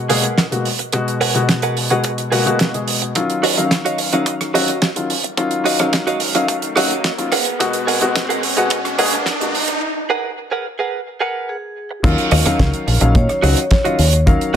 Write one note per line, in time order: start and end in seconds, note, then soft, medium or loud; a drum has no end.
0.09 0.24 B2 medium
0.09 0.24 G#3 medium
0.09 0.24 A#3 medium
0.09 0.44 G#4 loud
0.09 0.24 G#4 loud
0.09 0.45 A#4 medium
0.09 0.45 B4 loud
0.09 0.45 F#5 loud
0.09 open hi-hat loud
0.23 closed hi-hat medium
0.38 kick medium
0.38 snare loud
0.38 closed hi-hat medium
0.51 0.65 B2 medium
0.51 0.65 G#3 medium
0.51 0.66 A#3 medium
0.51 0.66 F#4 medium
0.51 closed hi-hat medium
0.65 open hi-hat medium
0.79 muted clean electric guitar stroke soft
0.79 closed hi-hat medium
0.92 1.32 B2 medium
0.92 1.32 G#3 medium
0.92 1.32 F#4 loud
0.92 kick loud
0.92 closed hi-hat medium
1.08 closed hi-hat soft
1.21 1.42 G#4 loud
1.21 1.42 A#4 loud
1.21 1.42 B4 loud
1.21 1.42 F#5 loud
1.21 open hi-hat loud
1.34 1.87 B2 medium
1.34 1.87 G#3 medium
1.34 1.87 F#4 medium
1.34 closed hi-hat medium
1.49 kick loud
1.49 snare loud
1.49 closed hi-hat medium
1.62 1.76 G#4 medium
1.62 1.77 A#4 medium
1.62 1.77 B4 medium
1.62 1.77 F#5 medium
1.62 closed hi-hat medium
1.77 open hi-hat medium
1.90 2.29 B2 medium
1.90 2.29 G#3 medium
1.90 2.29 F#4 medium
1.90 2.11 G#4 medium
1.90 2.11 A#4 medium
1.90 2.12 B4 medium
1.90 2.12 F#5 loud
1.90 closed hi-hat soft
2.04 kick loud
2.04 closed hi-hat medium
2.18 closed hi-hat medium
2.31 2.44 B2 medium
2.31 2.44 G#3 medium
2.31 2.44 A#3 medium
2.31 2.44 F#4 loud
2.31 2.67 G#4 loud
2.31 2.67 A#4 medium
2.31 2.67 B4 loud
2.31 2.67 F#5 loud
2.31 open hi-hat loud
2.46 2.70 B2 medium
2.46 2.70 G#3 medium
2.46 2.71 A#3 medium
2.46 2.71 F#4 medium
2.46 closed hi-hat medium
2.59 kick medium
2.59 snare loud
2.59 closed hi-hat medium
2.74 3.12 B2 medium
2.74 3.12 G#3 medium
2.74 3.12 G#4 medium
2.74 closed hi-hat soft
2.88 open hi-hat loud
3.02 muted clean electric guitar stroke soft
3.02 closed hi-hat medium
3.15 3.54 D#3 medium
3.15 3.54 F#3 medium
3.15 3.54 C#4 medium
3.15 3.54 F4 loud
3.15 kick loud
3.15 closed hi-hat medium
3.15 riser medium
3.30 closed hi-hat soft
3.43 3.64 F#4 loud
3.43 3.64 C#5 medium
3.43 3.64 D#5 loud
3.43 3.64 F5 loud
3.43 open hi-hat loud
3.57 4.09 D#3 medium
3.57 4.09 F#3 medium
3.57 4.10 C#4 medium
3.57 4.10 F5 medium
3.57 closed hi-hat soft
3.71 kick loud
3.71 snare loud
3.71 closed hi-hat medium
3.85 3.99 F#4 medium
3.85 3.99 C#5 medium
3.85 3.99 D#5 medium
3.85 3.99 F5 medium
3.85 closed hi-hat medium
3.98 open hi-hat medium
4.12 4.51 D#3 medium
4.12 4.51 F#3 medium
4.12 4.51 C#4 medium
4.12 4.34 F#4 medium
4.12 4.34 C#5 medium
4.12 4.34 D#5 medium
4.12 4.51 F5 medium
4.12 4.34 F5 medium
4.12 closed hi-hat medium
4.26 kick loud
4.26 closed hi-hat medium
4.41 cross-stick medium
4.41 closed hi-hat soft
4.54 4.68 D#3 medium
4.54 4.68 F#3 medium
4.54 4.69 C#4 medium
4.54 4.89 F#4 loud
4.54 4.69 F#4 loud
4.54 4.89 C#5 medium
4.54 4.89 D#5 loud
4.54 4.89 F5 loud
4.54 open hi-hat medium
4.68 closed hi-hat medium
4.82 kick loud
4.82 snare loud
4.82 closed hi-hat medium
4.96 5.10 D#3 medium
4.96 5.10 F#3 medium
4.96 5.10 C#4 medium
4.96 5.10 F4 medium
4.96 closed hi-hat medium
5.10 open hi-hat medium
5.24 muted clean electric guitar stroke soft
5.24 closed hi-hat medium
5.37 5.76 D#3 medium
5.37 5.76 F#3 medium
5.37 5.76 C#4 medium
5.37 5.76 F4 loud
5.37 kick loud
5.37 closed hi-hat medium
5.51 closed hi-hat medium
5.65 5.86 F#4 loud
5.65 5.86 C#5 medium
5.65 5.87 D#5 loud
5.65 5.87 F5 loud
5.65 open hi-hat medium
5.79 6.31 D#3 medium
5.79 6.32 F#3 medium
5.79 6.32 C#4 medium
5.79 6.32 F5 loud
5.79 cross-stick medium
5.79 closed hi-hat medium
5.93 kick loud
5.93 snare loud
5.93 closed hi-hat medium
6.07 6.21 F#4 medium
6.07 6.21 C#5 medium
6.07 6.21 D#5 medium
6.07 6.21 F5 medium
6.07 closed hi-hat soft
6.20 open hi-hat loud
6.35 6.73 D#3 medium
6.35 6.73 F#3 medium
6.35 6.73 C#4 medium
6.35 6.56 F#4 medium
6.35 6.56 C#5 medium
6.35 6.56 D#5 medium
6.35 6.73 F5 medium
6.35 6.56 F5 medium
6.35 closed hi-hat medium
6.48 kick loud
6.48 closed hi-hat medium
6.62 closed hi-hat medium
6.76 6.91 D#3 medium
6.76 6.91 F#3 medium
6.76 6.91 C#4 medium
6.76 7.11 F#4 loud
6.76 6.91 F#4 loud
6.76 7.11 C#5 loud
6.76 7.11 D#5 loud
6.76 7.12 F5 loud
6.76 cross-stick medium
6.76 open hi-hat medium
6.91 closed hi-hat medium
7.04 kick loud
7.04 snare loud
7.04 closed hi-hat medium
7.18 7.30 D#3 medium
7.18 7.30 F#3 medium
7.18 7.30 C#4 medium
7.18 7.31 F4 medium
7.18 closed hi-hat medium
7.32 7.77 G#4 medium
7.32 7.77 A#4 medium
7.32 7.77 B4 medium
7.32 7.77 F#5 loud
7.32 cross-stick medium
7.32 open hi-hat medium
7.45 closed hi-hat medium
7.59 7.98 B2 medium
7.59 7.98 G#3 medium
7.59 7.99 F#4 loud
7.59 kick loud
7.59 closed hi-hat medium
7.73 closed hi-hat medium
7.87 8.08 G#4 loud
7.87 8.09 A#4 medium
7.87 8.09 B4 loud
7.87 8.09 F#5 loud
7.87 open hi-hat loud
8.01 8.54 B2 medium
8.01 8.54 G#3 medium
8.01 8.54 F#4 loud
8.01 closed hi-hat medium
8.16 kick loud
8.16 snare loud
8.16 closed hi-hat medium
8.29 8.43 G#4 medium
8.29 8.43 A#4 medium
8.29 8.43 B4 medium
8.29 8.43 F#5 medium
8.29 closed hi-hat medium
8.43 open hi-hat loud
8.57 8.95 B2 medium
8.57 8.95 G#3 medium
8.57 8.96 F#4 medium
8.57 8.78 G#4 medium
8.57 8.78 A#4 medium
8.57 8.78 B4 medium
8.57 8.78 F#5 medium
8.57 closed hi-hat medium
8.70 kick loud
8.70 closed hi-hat medium
8.85 cross-stick medium
8.85 closed hi-hat medium
8.98 9.13 B2 loud
8.98 9.13 G#3 medium
8.98 9.13 A#3 medium
8.98 9.33 G#4 loud
8.98 9.13 G#4 loud
8.98 9.33 A#4 loud
8.98 9.34 B4 loud
8.98 9.34 F#5 loud
8.98 open hi-hat loud
9.13 closed hi-hat soft
9.26 kick loud
9.26 snare loud
9.26 closed hi-hat medium
9.40 9.54 B2 medium
9.40 9.54 G#3 medium
9.40 9.54 A#3 medium
9.40 9.55 F#4 medium
9.40 closed hi-hat medium
9.55 open hi-hat medium
9.68 muted clean electric guitar stroke soft
9.68 closed hi-hat medium
10.10 10.31 G#4 loud
10.10 10.31 A#4 loud
10.10 10.31 B4 loud
10.10 10.31 F#5 loud
10.51 10.65 G#4 medium
10.51 10.65 A#4 medium
10.51 10.66 B4 medium
10.51 10.66 F#5 medium
10.79 11.00 G#4 medium
10.79 11.00 A#4 medium
10.79 11.00 B4 medium
10.79 11.00 F#5 medium
11.20 11.56 G#4 loud
11.20 11.56 A#4 loud
11.20 11.56 B4 loud
11.20 11.56 F#5 loud
11.49 12.01 G#4 medium
11.91 muted clean electric guitar stroke soft
12.03 12.15 D#2 loud
12.03 12.42 D#3 loud
12.03 12.43 F#3 medium
12.03 12.43 C#4 medium
12.03 12.43 F4 loud
12.03 13.12 A#4 medium
12.03 kick loud
12.03 closed hi-hat medium
12.03 crash loud
12.18 closed hi-hat soft
12.31 12.43 D#2 medium
12.31 12.60 F#4 medium
12.31 12.60 C#5 medium
12.31 12.60 D#5 loud
12.31 12.60 F5 loud
12.31 open hi-hat loud
12.31 high conga medium
12.31 low conga loud
12.46 12.98 D#3 medium
12.46 12.98 F#3 medium
12.46 12.98 C#4 medium
12.46 12.98 F5 loud
12.46 muted fingered electric bass stroke soft
12.46 cross-stick medium
12.46 closed hi-hat medium
12.46 low conga medium
12.59 12.70 C#2 medium
12.59 kick loud
12.59 snare loud
12.59 closed hi-hat medium
12.74 closed hi-hat soft
12.87 12.98 A#1 medium
12.87 muted clean electric guitar stroke soft
12.87 open hi-hat medium
13.01 13.12 A#1 medium
13.01 13.40 D#3 medium
13.01 13.40 F#3 medium
13.01 13.40 C#4 medium
13.01 13.40 F5 medium
13.01 muted clean electric guitar stroke medium
13.01 closed hi-hat medium
13.08 13.15 D#5 medium
13.15 13.26 A#2 loud
13.15 13.67 C#5 medium
13.15 muted clean electric guitar stroke soft
13.15 kick loud
13.15 closed hi-hat medium
13.29 muted clean electric guitar stroke soft
13.29 cross-stick medium
13.29 closed hi-hat soft
13.42 13.54 C#2 medium
13.42 13.57 D#3 medium
13.42 13.57 F#3 medium
13.42 13.57 C#4 medium
13.42 13.64 F#4 loud
13.42 13.58 F#4 loud
13.42 13.64 C#5 medium
13.42 13.64 D#5 loud
13.42 13.64 F5 loud
13.42 open hi-hat loud
13.57 closed hi-hat medium
13.71 14.23 C#5 medium
13.71 kick loud
13.71 snare loud
13.71 closed hi-hat medium
13.84 13.99 D#3 medium
13.84 13.99 F#3 medium
13.84 13.99 C#4 medium
13.84 13.99 F4 medium
13.84 14.19 F#4 medium
13.84 14.20 C#5 medium
13.84 14.20 D#5 medium
13.84 14.20 F5 medium
13.84 closed hi-hat soft
13.99 14.35 D#2 medium
13.99 open hi-hat loud
14.13 closed hi-hat medium
14.26 14.56 D#3 medium
14.26 14.56 F#3 medium
14.26 14.56 C#4 medium
14.26 14.55 A#4 medium
14.26 14.56 F5 loud
14.26 kick loud
14.26 closed hi-hat medium
14.41 closed hi-hat soft